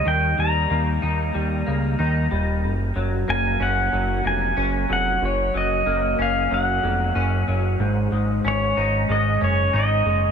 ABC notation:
X:1
M:4/4
L:1/8
Q:1/4=93
K:Gblyd
V:1 name="Pedal steel guitar"
=g b6 z | z2 a g2 a2 g | d e2 f g3 z | z2 d2 e d e2 |]
V:2 name="Clean electric guitar"
[E,=G,B,E] G, B, E G, B, E G, | z G, B, D G, B, D G,- | G, G, B, D G, B, D G, | A,, A, D E A, D E A, |]
V:3 name="Analog synth bass" clef=bass
E,, E,, E,, E,, E,, D,, E,, E,,, | G,,, G,,, G,,, G,,, G,,, F,,, G,,, F,,, | G,,, G,,, G,,, G,,, G,,, F,,, G,,, G,,, | A,,, A,,, A,,, A,,, A,,, G,,, A,,, G,,, |]